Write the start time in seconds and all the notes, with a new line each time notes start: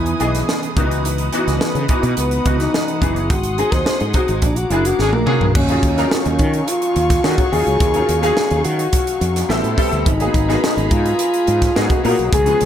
Already playing: E2 E3 B3 D#4 E4 G#4 B4 G#5 D#6
0.06 closed hi-hat
0.20 B1 E3 B3 G#4 D#5, closed hi-hat
0.35 snare, closed hi-hat
0.49 snare
0.63 closed hi-hat
0.76 C#2 D#3 B3 D#4 F#4 B4 F#5, kick, closed hi-hat
0.82 E3
0.91 closed hi-hat
1.05 closed hi-hat
1.18 closed hi-hat
1.32 E3 B3 D#4 F#4, closed hi-hat
1.47 C#2, snare, closed hi-hat
1.61 snare
1.75 C#3, closed hi-hat
1.88 E3 B3 D#4 F#4, kick, closed hi-hat
2.03 B2, closed hi-hat
2.17 C#2 B3, closed hi-hat
2.31 closed hi-hat
2.45 C#2 E3 B3 D#4 F#4, kick, closed hi-hat
2.60 D#4, snare, closed hi-hat
2.74 snare
2.88 closed hi-hat
3.01 F#1 E3 B3 D#4 E4 G#4, kick, closed hi-hat
3.16 closed hi-hat
3.30 G#1 F#4 G#4 C6 D#6, kick, closed hi-hat
3.43 closed hi-hat
3.57 F#3 C4 D#4 G#4, closed hi-hat
3.72 D#2 C5, kick, snare, closed hi-hat
3.86 muted fretless electric bass stroke, snare
4.00 G#2, closed hi-hat
4.13 F#3 C4 D#4 F#4, kick, closed hi-hat
4.28 G#1, closed hi-hat
4.42 A#1 D4 A#5 D6, kick, closed hi-hat
4.56 F#4, closed hi-hat
4.70 F#1 F#3 A#3 D4 E4 G#4, closed hi-hat
4.85 F#4, closed hi-hat
4.99 G#1 D3 C#4 G#4, snare
5.13 A#1 A#4, high tom
5.26 D3 F#3 A#3 C#4 D4 G#4, mid tom
5.40 B1, floor tom
5.55 D#2 F#3 C#4 F5 G#5 C#6, kick, crash
5.68 F#3 C#4 D#4 F4 G#4, closed hi-hat
5.83 D#2, kick, closed hi-hat
5.97 F#3 C#4 D#4 F4 A#4, snare, closed hi-hat
6.11 C#4, snare
6.25 D#2, closed hi-hat
6.39 D#3, kick, closed hi-hat
6.53 closed hi-hat
6.68 F4, closed hi-hat
6.82 closed hi-hat
6.96 D#2, closed hi-hat
7.10 kick, snare, closed hi-hat
7.23 D#3 F#3 C#4 D#4 F4 F#4 G#4, snare
7.38 kick, closed hi-hat
7.51 D#2 F#3 C#4 D#4 F4 G#4, open hi-hat
7.66 C#2, closed hi-hat
7.80 D#2, kick, closed hi-hat
7.94 F#3 C#4 D#4 F4 A#4, closed hi-hat
8.09 D#2, closed hi-hat
8.22 F#3 C#4 D#4 G#4 F5, snare, closed hi-hat
8.37 snare
8.51 D#2, closed hi-hat
8.64 D#3 F#4, closed hi-hat
8.79 closed hi-hat
8.93 kick, closed hi-hat
9.07 closed hi-hat
9.21 F2, closed hi-hat
9.36 snare, closed hi-hat
9.49 A1 G3 B3 C4 E4 A4 G5 B5 C6, snare
9.64 A2, closed hi-hat
9.76 G3 B3 C4 E4 A4, kick, open hi-hat
9.92 D2, closed hi-hat
10.06 G#1 D#4 G#4 G#5 A#5, kick, closed hi-hat
10.20 F#3 A#3 B3 D#4 G#4, closed hi-hat
10.34 G#1, kick, closed hi-hat
10.48 F#3 A#3 B3 D#4 G#4, snare, closed hi-hat
10.63 D#4, snare
10.77 G#1, closed hi-hat
10.91 G#2 F4, kick, closed hi-hat
11.06 closed hi-hat
11.19 closed hi-hat
11.34 closed hi-hat
11.47 G#2, closed hi-hat
11.62 kick, snare, closed hi-hat
11.75 G#2 F#3 A#3 B3 D#4 F#4 G#4, snare
11.90 kick, closed hi-hat
12.03 A#2 F#3 A#3 B3 D#4 F#4 A#4, open hi-hat
12.19 B1, closed hi-hat
12.33 C#2 G#4 F5 B5 C#6, kick, closed hi-hat
12.46 F3 G#3 B3 C#4 G#4, closed hi-hat
12.61 C#2, closed hi-hat